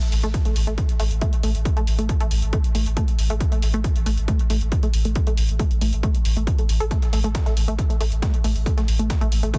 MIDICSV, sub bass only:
0, 0, Header, 1, 2, 480
1, 0, Start_track
1, 0, Tempo, 437956
1, 1813, Time_signature, 4, 2, 24, 8
1, 10504, End_track
2, 0, Start_track
2, 0, Title_t, "Sub bass"
2, 0, Program_c, 0, 38
2, 133, Note_on_c, 0, 33, 101
2, 250, Note_off_c, 0, 33, 0
2, 257, Note_on_c, 0, 33, 79
2, 370, Note_off_c, 0, 33, 0
2, 497, Note_on_c, 0, 33, 74
2, 606, Note_off_c, 0, 33, 0
2, 613, Note_on_c, 0, 33, 102
2, 729, Note_off_c, 0, 33, 0
2, 736, Note_on_c, 0, 33, 85
2, 850, Note_off_c, 0, 33, 0
2, 1094, Note_on_c, 0, 33, 95
2, 1210, Note_off_c, 0, 33, 0
2, 1217, Note_on_c, 0, 33, 79
2, 1331, Note_off_c, 0, 33, 0
2, 1573, Note_on_c, 0, 33, 104
2, 1689, Note_off_c, 0, 33, 0
2, 1696, Note_on_c, 0, 33, 79
2, 1810, Note_off_c, 0, 33, 0
2, 2053, Note_on_c, 0, 33, 97
2, 2170, Note_off_c, 0, 33, 0
2, 2177, Note_on_c, 0, 33, 77
2, 2291, Note_off_c, 0, 33, 0
2, 2417, Note_on_c, 0, 33, 72
2, 2526, Note_off_c, 0, 33, 0
2, 2533, Note_on_c, 0, 33, 99
2, 2650, Note_off_c, 0, 33, 0
2, 2657, Note_on_c, 0, 33, 81
2, 2771, Note_off_c, 0, 33, 0
2, 3013, Note_on_c, 0, 33, 97
2, 3130, Note_off_c, 0, 33, 0
2, 3137, Note_on_c, 0, 33, 82
2, 3251, Note_off_c, 0, 33, 0
2, 3493, Note_on_c, 0, 33, 101
2, 3609, Note_off_c, 0, 33, 0
2, 3616, Note_on_c, 0, 33, 80
2, 3730, Note_off_c, 0, 33, 0
2, 3973, Note_on_c, 0, 33, 96
2, 4089, Note_off_c, 0, 33, 0
2, 4096, Note_on_c, 0, 33, 78
2, 4210, Note_off_c, 0, 33, 0
2, 4337, Note_on_c, 0, 33, 78
2, 4446, Note_off_c, 0, 33, 0
2, 4453, Note_on_c, 0, 33, 101
2, 4570, Note_off_c, 0, 33, 0
2, 4577, Note_on_c, 0, 33, 85
2, 4690, Note_off_c, 0, 33, 0
2, 4932, Note_on_c, 0, 33, 99
2, 5050, Note_off_c, 0, 33, 0
2, 5056, Note_on_c, 0, 33, 79
2, 5170, Note_off_c, 0, 33, 0
2, 5411, Note_on_c, 0, 33, 99
2, 5528, Note_off_c, 0, 33, 0
2, 5535, Note_on_c, 0, 33, 81
2, 5649, Note_off_c, 0, 33, 0
2, 5890, Note_on_c, 0, 33, 98
2, 6007, Note_off_c, 0, 33, 0
2, 6014, Note_on_c, 0, 33, 82
2, 6129, Note_off_c, 0, 33, 0
2, 6256, Note_on_c, 0, 33, 76
2, 6364, Note_off_c, 0, 33, 0
2, 6371, Note_on_c, 0, 33, 101
2, 6490, Note_off_c, 0, 33, 0
2, 6496, Note_on_c, 0, 33, 83
2, 6610, Note_off_c, 0, 33, 0
2, 6852, Note_on_c, 0, 33, 99
2, 6970, Note_off_c, 0, 33, 0
2, 6977, Note_on_c, 0, 33, 86
2, 7090, Note_off_c, 0, 33, 0
2, 7332, Note_on_c, 0, 33, 100
2, 7450, Note_off_c, 0, 33, 0
2, 7457, Note_on_c, 0, 33, 79
2, 7571, Note_off_c, 0, 33, 0
2, 7813, Note_on_c, 0, 33, 103
2, 7931, Note_off_c, 0, 33, 0
2, 7937, Note_on_c, 0, 33, 78
2, 8051, Note_off_c, 0, 33, 0
2, 8176, Note_on_c, 0, 33, 76
2, 8286, Note_off_c, 0, 33, 0
2, 8293, Note_on_c, 0, 33, 101
2, 8410, Note_off_c, 0, 33, 0
2, 8416, Note_on_c, 0, 33, 82
2, 8530, Note_off_c, 0, 33, 0
2, 8773, Note_on_c, 0, 33, 96
2, 8889, Note_off_c, 0, 33, 0
2, 8896, Note_on_c, 0, 33, 83
2, 9010, Note_off_c, 0, 33, 0
2, 9251, Note_on_c, 0, 33, 94
2, 9370, Note_off_c, 0, 33, 0
2, 9376, Note_on_c, 0, 33, 80
2, 9490, Note_off_c, 0, 33, 0
2, 9732, Note_on_c, 0, 33, 101
2, 9850, Note_off_c, 0, 33, 0
2, 9856, Note_on_c, 0, 33, 85
2, 9970, Note_off_c, 0, 33, 0
2, 10096, Note_on_c, 0, 33, 80
2, 10206, Note_off_c, 0, 33, 0
2, 10213, Note_on_c, 0, 33, 103
2, 10330, Note_off_c, 0, 33, 0
2, 10337, Note_on_c, 0, 33, 82
2, 10450, Note_off_c, 0, 33, 0
2, 10504, End_track
0, 0, End_of_file